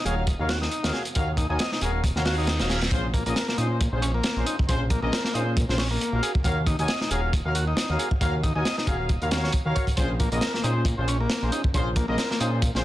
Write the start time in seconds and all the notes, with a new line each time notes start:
0.05 D#1 F#4 G#4 A#4 C#5 F5, closed hi-hat
0.27 kick, closed hi-hat
0.39 D#2 F#4 A#4 C#5 F5
0.49 F#4, snare, closed hi-hat
0.62 D#4, snare
0.71 closed hi-hat
0.83 D#2 F#4 A#4 C#5 F5, snare, closed hi-hat
0.93 G#4, snare
1.05 closed hi-hat
1.15 D#2 F#4 A#4 C#5 F5, kick, closed hi-hat
1.37 D#4, kick, closed hi-hat
1.50 D#2 D#4 F#4 A#4 C#5 G#5
1.59 D#5, snare, closed hi-hat
1.72 D#4, snare
1.81 D#1 F#4 G#4 A#4 C#5 F5, closed hi-hat
2.04 kick, closed hi-hat, reverse cymbal
2.16 D#2 F#4 A#4 C#5 F5, snare
2.25 F#4 A#4 C#5 F5, snare, open hi-hat
2.38 D#4
2.47 snare, closed hi-hat
2.60 D#1 F#4 A#4 C#5 F5, snare, closed hi-hat
2.70 G#4, snare, closed hi-hat
2.81 snare, closed hi-hat
2.91 A#1 C#4 F4 G#4 C5, kick, closed hi-hat
3.14 A#3, kick, closed hi-hat
3.26 A#1 A#3 C#4 F4 G#4 D#5, closed hi-hat
3.36 A#4, snare, closed hi-hat
3.48 A#3, snare
3.58 A#2 C#4 D#4 F4 G#4 C5, closed hi-hat
3.81 kick, closed hi-hat
3.92 A#1 C#4 F4 G#4 C5
4.02 C#4, closed hi-hat
4.14 A#3
4.23 snare, closed hi-hat
4.36 A#1 C#4 F4 G#4 C5
4.46 D#4, closed hi-hat
4.59 kick
4.69 A#1 C#4 F4 G#4 C5, kick, closed hi-hat
4.90 A#3, kick, closed hi-hat
5.02 A#1 A#3 C#4 F4 G#4 D#5
5.12 A#4, snare, closed hi-hat
5.24 A#3, snare
5.34 A#2 C#4 D#4 F4 G#4 C5, closed hi-hat
5.57 kick, closed hi-hat
5.69 A#1 C#4 F4 G#4 C5, snare
5.78 C#4, snare, open hi-hat
5.91 A#3
6.01 closed hi-hat
6.13 A#1 F#4 A#4 C#5 F5
6.23 G#4, closed hi-hat
6.35 kick
6.44 D#2 F#4 A#4 C#5 F5, kick, closed hi-hat
6.66 D#4, kick, closed hi-hat
6.79 D#2 D#4 F#4 A#4 C#5 G#5, closed hi-hat
6.88 D#5, snare, closed hi-hat
7.01 D#4, snare
7.11 D#1 F#4 G#4 A#4 C#5 F5, closed hi-hat
7.33 kick, closed hi-hat
7.45 D#2 F#4 A#4 C#5 F5
7.55 F#4, closed hi-hat
7.67 D#4
7.77 snare, closed hi-hat
7.89 D#2 F#4 A#4 C#5 F5
7.99 G#4, closed hi-hat
8.11 kick
8.21 D#2 F#4 A#4 C#5 F5, kick, closed hi-hat
8.43 D#4, kick, closed hi-hat
8.56 D#2 D#4 F#4 A#4 C#5 G#5
8.65 D#5, snare, closed hi-hat
8.78 D#4, snare
8.87 D#1 F#4 G#4 A#4 C#5 F5, kick, closed hi-hat
9.09 kick, closed hi-hat
9.22 D#2 F#4 A#4 C#5 F5, closed hi-hat
9.31 C#4 F#4 A#4 C#5 F5, snare, closed hi-hat
9.44 C#5, snare
9.52 kick, closed hi-hat
9.66 D#2 F#4 A#4 C#5 F5
9.75 C#5, kick, closed hi-hat
9.87 kick, closed hi-hat
9.97 A#1 C#4 F4 G#4 C5, kick, closed hi-hat
10.20 A#3, kick, closed hi-hat
10.32 A#1 A#3 C#4 F4 G#4 D#5, closed hi-hat
10.41 A#4, snare, closed hi-hat
10.54 A#3, snare
10.64 A#2 C#4 D#4 F4 G#4 C5, closed hi-hat
10.85 kick, closed hi-hat
10.98 A#1 C#4 F4 G#4 C5
11.08 C#4, closed hi-hat
11.20 A#3
11.30 snare, closed hi-hat
11.42 A#1 C#4 F4 G#4 C5
11.52 D#4, closed hi-hat
11.64 kick
11.74 A#1 C#4 F4 G#4 C5, kick, closed hi-hat
11.96 A#3, kick, closed hi-hat
12.08 A#1 A#3 C#4 F4 G#4 D#5
12.18 A#4, snare, closed hi-hat
12.31 A#3, snare
12.40 A#2 C#4 D#4 F4 G#4 C5, closed hi-hat
12.62 kick, closed hi-hat
12.75 A#1 C#4 F4 G#4 C5, snare